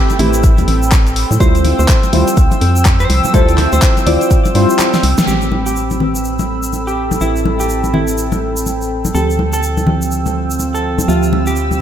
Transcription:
Already playing: A3 C4 G4 A4 B4 G5 B5 E6
0.10 closed hi-hat, high conga, shaker
0.19 A1 A3 C4 E4 G4 B4, open hi-hat, low conga
0.33 closed hi-hat, shaker
0.43 kick, closed hi-hat, shaker
0.58 E2, closed hi-hat, high conga, shaker
0.68 A1, open hi-hat
0.83 shaker
0.92 kick, clap, closed hi-hat, high conga, shaker
1.07 closed hi-hat, shaker
1.16 open hi-hat
1.31 A2, high conga, shaker
1.40 D2 G3 E4 F4 C5 G5 E6, kick, closed hi-hat, shaker
1.55 closed hi-hat, shaker
1.65 open hi-hat, high conga
1.71 E6
1.79 D2 F3 C5, shaker
1.88 kick, clap, closed hi-hat, shaker
2.03 closed hi-hat, high conga, shaker
2.12 D2 G3 E4 F4 C5, open hi-hat, low conga
2.28 closed hi-hat, shaker
2.37 C2, kick, closed hi-hat, shaker
2.51 closed hi-hat, high conga, shaker
2.61 F2, open hi-hat
2.76 shaker
2.85 kick, clap, closed hi-hat, high conga, shaker
3.00 C5, closed hi-hat, shaker
3.10 C2, open hi-hat
3.24 high conga, shaker
3.33 D2 G3 E4 F4 A4 C5, kick, closed hi-hat, shaker
3.49 closed hi-hat, shaker
3.58 clap, open hi-hat, high conga
3.73 D2 C5, closed hi-hat, shaker
3.82 kick, clap, closed hi-hat, shaker
3.97 closed hi-hat, high conga, shaker
4.06 D2 G3 E4 F4 C5 D5, open hi-hat, low conga
4.21 closed hi-hat, shaker
4.31 kick, closed hi-hat, shaker
4.45 closed hi-hat, high conga, shaker
4.54 G2 G3 E4 F4 C5, open hi-hat
4.70 shaker
4.79 clap, closed hi-hat, high conga, shaker
4.93 snare, closed hi-hat, shaker
5.03 C2, open hi-hat
5.18 snare, high conga, shaker
5.27 A1 A3 C4 G4 B4 G5 B5 E6, shaker
5.41 shaker
5.52 high conga
5.66 G4, shaker
5.76 shaker
5.90 high conga, shaker
5.99 A3 C4 G4 A4 B4, low conga
6.15 shaker
6.24 shaker
6.39 high conga, shaker
6.63 shaker
6.73 high conga, shaker
6.87 G4, shaker
7.11 high conga, shaker
7.20 A1 A3 C4 E4 G4 B4, shaker
7.36 shaker
7.46 high conga
7.60 G4, shaker
7.69 shaker
7.84 high conga, shaker
7.93 A3 C4 E4 G4 B4, low conga
8.08 shaker
8.18 shaker
8.32 high conga, shaker
8.57 shaker
8.66 high conga, shaker
8.81 shaker
9.05 high conga, shaker
9.14 D2 F3 C4 E4 G4 A4 E6, shaker
9.30 shaker
9.39 high conga
9.49 F3, shaker
9.53 A4
9.63 shaker
9.77 high conga, shaker
9.86 F3 C4 E4 G4, low conga
10.02 shaker
10.12 shaker
10.26 high conga, shaker
10.51 E6, shaker
10.59 high conga, shaker
10.74 A4, shaker
10.98 high conga, shaker
11.07 D2 F3 C4 F4 G4 E5 B5, shaker
11.23 shaker
11.33 high conga
11.47 G4, shaker
11.56 shaker
11.71 high conga, shaker

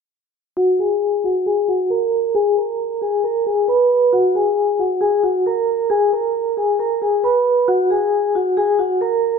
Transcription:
0.57 F#4 F#5
0.79 G#4 G#5
1.24 F#4 F#5
1.46 G#4 G#5
1.68 F#4 F#5
1.90 A#4 A#5
2.35 G#4 G#5
3.01 G#4 G#5
3.24 A#4 A#5
3.46 G#4 G#5
3.68 B4 B5
4.13 F#4 F#5
4.35 G#4 G#5
4.79 F#4 F#5
5.01 G#4 G#5
5.23 F#4 F#5
5.46 A#4 A#5
5.90 G#4 G#5
6.13 A#4 A#5
6.57 G#4 G#5
6.79 A#4 A#5
7.02 G#4 G#5
7.24 B4 B5
7.68 F#4 F#5
7.90 G#4 G#5
8.35 F#4 F#5
8.57 G#4 G#5
8.79 F#4 F#5
9.01 A#4 A#5

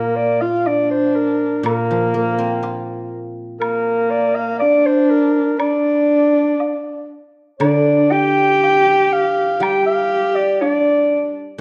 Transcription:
Already playing: A#2 A#3 A#4
0.16 D5
0.41 F4 F5
0.66 D4 D5, low woodblock
0.91 C5
1.15 A#4
1.63 A#2 A#3 A#4, high woodblock
1.91 F3
2.14 A#3
2.39 C4
2.63 F4, low woodblock
3.60 A#3 A#4, high woodblock
4.10 D5
4.35 F5
4.59 D4 D5, low woodblock
4.86 C5
5.10 A#4
5.59 D4 D5, high woodblock
6.60 low woodblock
7.59 D3 D4 D5, high woodblock
8.11 G4 G5
8.63 low woodblock
9.13 F5
9.60 G3 G4 G5, high woodblock
9.86 F5
10.35 D5
10.60 D4 D5, low woodblock

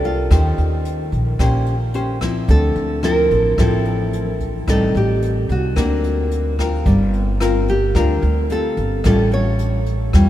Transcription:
Already playing: C2 C3 A3 D4 G4
0.03 F4, kick, closed hi-hat
0.30 D#2 D#3 C#4 G4 C5, kick, cross-stick, closed hi-hat
0.58 D#2, closed hi-hat
0.85 closed hi-hat
1.12 A#1, kick, closed hi-hat
1.39 A#1 A#2 C#4 G4 C5, kick, cross-stick, closed hi-hat
1.66 closed hi-hat
1.94 C#4 G4 C5, closed hi-hat
2.21 F3 C4 E4, kick, cross-stick, closed hi-hat
2.48 D2 D3 A4, kick, closed hi-hat
2.76 D2, closed hi-hat
3.03 F3 C4 E4 A#4, cross-stick, closed hi-hat
3.31 A1, kick, closed hi-hat
3.58 A1 A2 F3 C4 E4 A4, kick, cross-stick, closed hi-hat
3.85 closed hi-hat
4.13 closed hi-hat
4.40 kick, closed hi-hat
4.67 A1 A2 G3 C4 D#4 A4, kick, cross-stick, closed hi-hat
4.94 A1 G4, closed hi-hat
5.22 closed hi-hat
5.49 C2 F#4, kick, closed hi-hat
5.76 D2 D3 A#3 C4 F#4, kick, cross-stick, closed hi-hat
6.04 closed hi-hat
6.31 closed hi-hat
6.58 C4 F4 A#4, kick, cross-stick, closed hi-hat
6.86 G1 G3, kick, closed hi-hat
7.13 closed hi-hat
7.40 C4 F4 A#4, cross-stick, closed hi-hat
7.68 G4, closed hi-hat
7.95 D2 D3 C4 F4 A#4, kick, cross-stick, closed hi-hat
8.22 D2, closed hi-hat
8.50 C4 F4 A4, closed hi-hat
8.77 G1, closed hi-hat
9.04 A1 A2 G3 C#4 F4 A4, kick, cross-stick, closed hi-hat
9.31 C#5, closed hi-hat
9.59 closed hi-hat
9.86 closed hi-hat
10.13 E2 G3 C#4 F4, kick, cross-stick, closed hi-hat

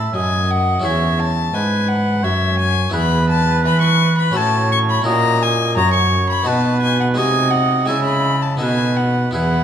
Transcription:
Already playing: A2 C#4 E4 G#4 E5 A5
0.14 F#2 D#5 G#5
0.51 F#5
0.80 C#4 E4 G#4
0.84 E2 C#5 E5
1.19 A5
1.54 G#2 B4 G#5
1.88 F#5
2.23 F#2 C#5 E5
2.60 G#5
2.90 E2 B3 E4 G#4 B4
2.94 E2 B5
3.30 A5
3.64 E3 B5
3.81 C#6
4.18 B5
4.31 A2 C#4 F#4 A4
4.36 A2 C#5 A5
4.72 C#6
4.90 B5
5.02 A#2 C#4 E4 F#4 D#5
5.06 A#2 A#5
5.42 G#5
5.76 F#2 C#5 A#5
5.94 C#6
6.30 B5
6.43 B2 B3 D#4 F#4 A5
6.48 B2 B4
6.81 G#5
7.00 F#5
7.14 C3 G#3 D#4 F#4 D#5 G#5
7.19 C3
7.51 F#5
7.86 C#3 G#3 E4 G#4 E5 G#5
7.90 C#3
8.04 B5
8.42 A5
8.57 B2 B3 D#4 A4 G#5
8.61 B2 B4
8.96 F#5
9.31 E2 B3 E4 G#4 B4 F#5
9.36 E2

